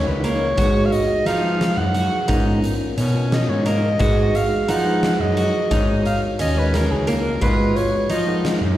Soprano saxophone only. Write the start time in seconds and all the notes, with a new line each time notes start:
0.07 B4
0.24 C#5
0.85 F5
0.92 D#5
1.26 F5
1.77 F#5
3.33 D#5
3.49 C#5
3.67 D#5
4.35 F5
4.69 F#5
5.21 D#5
6.06 F5
6.41 D#5
6.58 B4
6.75 A#4
6.91 G#4
7.08 A#4
7.42 B4
7.76 C#5
8.10 D#5